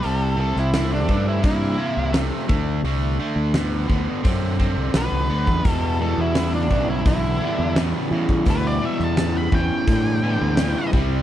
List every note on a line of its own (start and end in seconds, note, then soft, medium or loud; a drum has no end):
0.00 0.35 C3 medium
0.00 0.35 G3 medium
0.00 0.06 B4 loud
0.00 open hi-hat medium
0.05 0.53 C2 medium
0.05 0.37 A4 loud
0.36 0.69 C3 medium
0.36 0.69 G3 medium
0.41 0.57 A4 medium
0.56 1.09 C2 medium
0.56 0.92 E4 medium
0.56 snare soft
0.74 1.06 C3 medium
0.74 1.06 A3 medium
0.74 snare loud
0.74 open hi-hat medium
0.93 1.27 D4 medium
1.08 1.42 G2 loud
1.08 1.40 C3 medium
1.08 1.40 A3 medium
1.08 kick medium
1.29 1.44 E4 medium
1.42 1.77 G2 medium
1.42 1.75 C3 medium
1.42 1.75 A#3 loud
1.42 2.13 E4 medium
1.42 kick loud
1.42 open hi-hat medium
1.78 2.10 C3 medium
1.78 2.10 A#3 medium
1.97 2.30 C2 medium
2.13 2.45 C3 medium
2.13 2.45 A3 medium
2.13 snare loud
2.13 open hi-hat medium
2.48 2.82 D2 medium
2.48 2.81 D3 medium
2.48 2.81 A3 medium
2.48 kick loud
2.83 3.17 C2 loud
2.83 3.16 D3 medium
2.83 3.17 A3 medium
2.83 open hi-hat medium
3.19 3.51 D3 medium
3.19 3.51 A3 medium
3.36 3.86 D2 medium
3.54 3.86 D3 medium
3.54 3.86 B3 medium
3.54 snare loud
3.54 open hi-hat soft
3.88 4.06 D2 loud
3.88 4.21 D3 medium
3.88 4.21 B3 medium
3.88 kick medium
4.23 4.74 F#2 loud
4.23 4.56 D3 medium
4.23 4.56 C4 loud
4.23 kick loud
4.23 open hi-hat medium
4.59 4.91 D3 medium
4.59 4.92 C4 medium
4.59 kick medium
4.76 4.93 C2 medium
4.94 5.10 B1 medium
4.94 5.27 D3 medium
4.94 5.27 B3 medium
4.94 5.69 B4 loud
4.94 snare loud
4.94 open hi-hat medium
5.12 5.28 C2 medium
5.30 5.46 D2 medium
5.30 5.62 D3 medium
5.30 5.62 B3 medium
5.47 5.63 E2 medium
5.47 kick medium
5.65 5.97 E2 medium
5.65 6.15 E2 loud
5.65 6.00 E2 medium
5.65 6.01 B2 medium
5.65 5.97 B2 medium
5.65 6.01 E3 medium
5.65 6.00 G3 medium
5.65 6.00 B3 medium
5.65 5.99 E4 medium
5.65 kick loud
5.65 open hi-hat medium
5.69 5.99 A4 loud
6.00 6.32 E2 medium
6.00 6.33 B2 medium
6.00 6.34 E3 soft
6.00 6.35 G3 soft
6.00 6.36 B3 medium
6.00 6.36 E4 medium
6.00 6.18 A4 medium
6.17 6.71 E2 medium
6.17 6.54 E4 medium
6.35 6.67 E2 medium
6.35 6.67 C#3 medium
6.35 6.71 E3 medium
6.35 6.71 G3 medium
6.35 6.71 B3 medium
6.35 snare loud
6.35 open hi-hat medium
6.55 6.88 D4 medium
6.70 7.04 B1 loud
6.70 7.02 E2 medium
6.70 7.02 C#3 medium
6.70 7.78 G3 medium
6.70 7.77 B3 medium
6.70 7.79 E4 medium
6.70 kick medium
6.74 7.77 E3 soft
6.90 7.06 E4 medium
7.05 7.39 B1 medium
7.05 7.37 E2 medium
7.05 7.38 D3 loud
7.05 7.75 E4 loud
7.05 kick loud
7.05 open hi-hat medium
7.40 7.73 E2 medium
7.40 7.73 D3 medium
7.40 7.75 E3 medium
7.40 7.76 G3 medium
7.40 7.75 B3 medium
7.40 7.78 E4 medium
7.59 7.92 E2 medium
7.75 8.08 E2 medium
7.75 8.08 C#3 medium
7.75 8.12 E3 medium
7.75 8.12 G3 medium
7.75 8.11 B3 medium
7.75 8.48 E4 medium
7.75 snare loud
7.75 open hi-hat medium
8.11 8.43 E2 medium
8.11 8.44 C#3 medium
8.11 8.44 E3 medium
8.11 8.46 E3 medium
8.11 8.46 G3 medium
8.11 8.47 B3 medium
8.11 8.47 E4 medium
8.29 kick medium
8.45 8.79 D2 loud
8.45 8.78 E2 medium
8.45 8.82 E2 medium
8.45 8.78 B2 medium
8.45 8.82 B2 medium
8.45 8.82 E3 medium
8.45 8.82 G3 medium
8.45 8.82 B3 medium
8.45 8.81 E4 medium
8.45 kick loud
8.45 open hi-hat medium
8.50 8.67 B4 loud
8.67 8.83 D5 medium
8.82 9.14 E2 medium
8.82 9.14 B2 medium
8.82 9.15 E3 soft
8.82 9.16 G3 soft
8.82 9.17 B3 medium
8.82 9.17 E4 medium
8.82 9.01 E5 medium
8.99 9.49 E2 medium
8.99 snare soft
9.04 9.36 A5 medium
9.16 9.48 E2 medium
9.16 9.49 C#3 loud
9.16 9.52 E3 medium
9.16 9.52 G3 medium
9.16 9.52 B3 medium
9.16 9.51 E4 medium
9.16 snare loud
9.16 open hi-hat medium
9.38 9.53 B5 medium
9.52 9.69 E2 loud
9.52 9.84 E2 medium
9.52 9.84 C#3 medium
9.52 10.55 E3 soft
9.52 10.57 G3 soft
9.52 10.58 B3 medium
9.52 10.58 E4 medium
9.52 10.90 G5 loud
9.52 kick medium
9.87 10.19 E2 medium
9.87 10.37 A2 loud
9.87 10.19 D3 loud
9.87 kick loud
9.87 open hi-hat medium
10.22 10.54 E2 medium
10.22 10.54 D3 medium
10.22 10.56 E3 medium
10.22 10.57 G3 medium
10.22 10.56 B3 medium
10.22 10.55 E4 medium
10.41 10.74 D2 medium
10.57 10.90 E2 medium
10.57 10.90 C#3 medium
10.57 10.92 E3 medium
10.57 10.93 G3 medium
10.57 10.93 B3 medium
10.57 10.91 E4 medium
10.57 snare loud
10.57 open hi-hat medium
10.92 11.22 C2 medium
10.92 11.22 C3 medium
10.92 11.22 G3 medium
10.92 11.22 G3 soft
10.92 11.22 C4 medium
10.92 11.22 E4 medium
10.92 kick loud